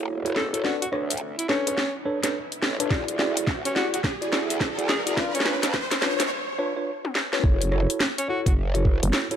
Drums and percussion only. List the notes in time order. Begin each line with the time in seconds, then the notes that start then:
0.26 closed hi-hat
0.36 snare
0.54 closed hi-hat
0.65 snare
0.82 closed hi-hat
0.93 cross-stick
1.10 closed hi-hat
1.17 closed hi-hat
1.39 closed hi-hat
1.49 snare
1.67 closed hi-hat
1.78 snare
2.23 snare, closed hi-hat
2.52 closed hi-hat
2.63 snare
2.80 closed hi-hat
2.90 kick, snare
3.08 closed hi-hat
3.19 snare
3.37 closed hi-hat
3.47 kick, snare
3.65 closed hi-hat
3.76 snare
3.94 closed hi-hat
4.04 kick, snare
4.22 closed hi-hat
4.33 snare
4.50 closed hi-hat
4.60 kick, snare
4.79 closed hi-hat
4.89 snare
5.07 closed hi-hat
5.17 kick, snare
5.35 closed hi-hat
5.40 snare
5.45 snare
5.63 snare, closed hi-hat
5.74 kick, snare
5.91 snare, closed hi-hat
6.02 snare
6.20 snare, closed hi-hat
7.05 high tom
7.15 snare
7.33 snare
7.44 kick
7.62 closed hi-hat
7.72 cross-stick
7.90 closed hi-hat
8.00 snare
8.18 closed hi-hat
8.46 kick, closed hi-hat
8.75 closed hi-hat
8.85 kick
9.03 closed hi-hat
9.13 snare
9.31 closed hi-hat